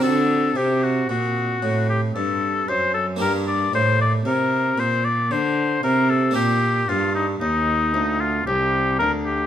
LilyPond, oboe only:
\new Staff \with { instrumentName = "Oboe" } { \time 3/4 \key g \minor \tempo 4 = 57 a'8 g'16 fis'16 fis'8. g'16 a'8 c''16 a'16 | bes'16 d''16 c''16 d''16 bes'8 c''16 d''16 c''8 bes'16 a'16 | g'8 f'16 ees'16 ees'8. f'16 g'8 bes'16 g'16 | }